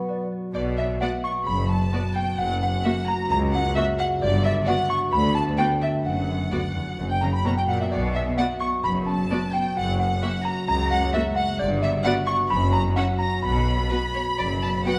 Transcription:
Already playing: B2 F#3 B3
0.08 F#4 D5
0.31 B3
0.54 B1 B2 D5
0.77 B3 E5
1.01 B3 F#4 D5 F#5
1.24 B3 C#6
1.46 F#1 F#2 F#3 B5
1.69 B3 A5
1.93 B3 F#4 D5
2.15 B3 G5
2.38 F#1 F#2 F#5
2.61 A#3 F#5
2.84 A#3 F#4 E5
3.07 A#3 A#5
3.30 C#2 C#3 A#5
3.53 A#3 F#5
3.76 A#3 F#4 E5
3.99 A#3 F#5
4.21 G1 G2 D5
4.44 B3 E5
4.66 B3 F#4 D5 F#5
4.89 B3 C#6
5.12 D2 D3 B5
5.34 B3 A5
5.58 B3 F#4 D5 G5
5.81 B3 E5
6.04 F#1 F#2 F#5
6.28 B3
6.51 D2 B3 F#4 D5
6.75 E2 B3
6.98 F#1 F#2
7.10 G5
7.21 C#3 A#3 A#5
7.33 B5
7.45 B2 A#3 F#4 C#5 A#5
7.57 G5
7.68 A#2 A#3 F#5
7.81 E5
7.91 B1 B2 D5
8.15 B3 E5
8.37 B3 F#4 D5 F#5
8.60 B3 C#6
8.84 F#1 F#2 F#3 B5
9.07 B3 A5
9.30 B3 F#4 D5
9.53 B3 G5
9.76 F#1 F#2 F#5
9.99 A#3 F#5
10.22 A#3 F#4 E5
10.44 A#3 A#5
10.67 C#2 C#3 A#5
10.90 A#3 F#5
11.13 A#3 F#4 E5
11.36 A#3 F#5
11.59 G1 G2 D5
11.82 B3 E5
12.04 B3 F#4 D5 F#5
12.27 B3 C#6
12.50 F#1 F#2 B5
12.73 C#4 A#5
12.96 C#4 F#4 E5 F#5
13.19 C#4 A#5
13.43 B1 B2 B5
13.67 B3
13.91 B3 F#4 B4
14.14 B3 C#5
14.38 F#1 F#2 F#3 D5
14.62 B3 A5
14.85 B3 F#4 B4 F#5 G5

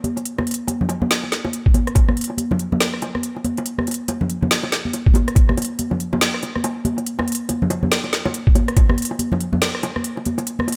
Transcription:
0.04 closed hi-hat, high conga
0.17 closed hi-hat, high bongo
0.25 closed hi-hat
0.38 cross-stick, high bongo, high conga
0.47 closed hi-hat
0.51 closed hi-hat
0.54 closed hi-hat
0.68 closed hi-hat, high bongo, high conga
0.81 low conga
0.89 closed hi-hat, high bongo
1.02 high conga, low conga
1.11 snare, closed hi-hat
1.23 high bongo
1.32 snare, closed hi-hat
1.45 high bongo, high conga
1.53 closed hi-hat
1.66 kick
1.74 closed hi-hat, high bongo, high conga
1.87 cross-stick, closed hi-hat
1.95 kick, closed hi-hat, high bongo
2.09 cross-stick, high conga
2.17 closed hi-hat
2.21 closed hi-hat
2.24 closed hi-hat
2.30 high bongo
2.38 closed hi-hat, high conga
2.51 high bongo, low conga
2.59 closed hi-hat
2.72 high conga, low conga
2.80 snare, closed hi-hat, high bongo
2.94 cross-stick
3.02 closed hi-hat, high bongo
3.15 cross-stick, high conga
3.23 closed hi-hat
3.37 high bongo
3.44 closed hi-hat, high conga
3.57 closed hi-hat, high bongo
3.66 closed hi-hat
3.78 cross-stick, high conga
3.87 closed hi-hat, high bongo
3.91 closed hi-hat
3.94 closed hi-hat
4.08 closed hi-hat, high bongo, high conga
4.21 low conga
4.30 closed hi-hat
4.42 high bongo, high conga, low conga
4.51 snare, closed hi-hat
4.63 high bongo
4.72 snare, closed hi-hat
4.85 high conga
4.93 closed hi-hat, high bongo
5.06 kick
5.14 closed hi-hat, high bongo, high conga
5.28 cross-stick, closed hi-hat
5.35 kick, closed hi-hat, high bongo
5.49 cross-stick, high conga
5.57 closed hi-hat, high bongo
5.62 closed hi-hat
5.65 closed hi-hat
5.79 closed hi-hat, high conga
5.91 high bongo, low conga
6.00 closed hi-hat
6.13 high bongo, high conga, low conga
6.21 snare, closed hi-hat
6.34 cross-stick
6.43 closed hi-hat, high bongo
6.56 cross-stick, high conga
6.64 closed hi-hat, high bongo
6.85 closed hi-hat, high conga
6.98 closed hi-hat, high bongo
7.06 closed hi-hat
7.19 cross-stick, high bongo, high conga
7.28 closed hi-hat
7.32 closed hi-hat
7.35 closed hi-hat
7.49 closed hi-hat, high bongo, high conga
7.62 low conga
7.70 closed hi-hat, high bongo
7.83 high conga, low conga
7.92 snare, closed hi-hat
8.04 high bongo
8.13 snare, closed hi-hat
8.25 high bongo, high conga
8.34 closed hi-hat
8.47 kick
8.55 closed hi-hat, high bongo, high conga
8.68 cross-stick, closed hi-hat
8.77 kick, closed hi-hat, high bongo
8.89 cross-stick, high conga
8.98 closed hi-hat
9.02 closed hi-hat
9.05 closed hi-hat
9.11 high bongo
9.19 closed hi-hat, high conga
9.32 high bongo, low conga
9.41 closed hi-hat
9.53 high conga, low conga
9.62 snare, closed hi-hat, high bongo
9.75 cross-stick
9.83 closed hi-hat, high bongo
9.96 cross-stick, high conga
10.04 closed hi-hat
10.17 high bongo
10.25 closed hi-hat, high conga
10.38 closed hi-hat, high bongo
10.47 closed hi-hat
10.59 cross-stick, high conga
10.68 closed hi-hat, high bongo
10.72 closed hi-hat

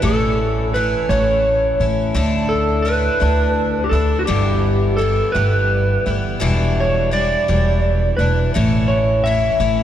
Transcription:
0.02 A1 A2 E3 A3 C#4 E4 A4
0.74 E3 A3 C#4 E4 B4
1.09 A1 A2 E3 A3 C#4 E4 C#5
1.80 A1 A3 C#4 E4
2.14 D2 D3 A3 D4 E4
2.49 A4
2.82 D3 A3 B4
2.87 D4 E4
3.20 D2 D3 A3 D4 E4
3.84 G4
3.89 D2 E4 A4
3.94 A3 D4
4.19 F#4
4.26 G1 G2 D3 E3 G3 B3 E4 G4
4.97 E3 G3 A4
5.01 B3 E4
5.32 G1 D3 E3 G3 B3 E4 B4
5.36 G2
6.06 G1 E3 G3 B3 E4
6.40 E1 E2 B2 E3 G3 D4 E4
6.80 C#5
7.11 E3 G3 D4 E4 D5
7.48 E1 E2 B2 E3 G3 D4 E4
8.17 E1 D4 E4 B4
8.21 E3 G3
8.54 A1 A2 E3 A3 C#4 E4
8.88 C#5
9.24 E3 A3 C#4 E4 E5
9.60 A1 A2 E3 A3 C#4 E4

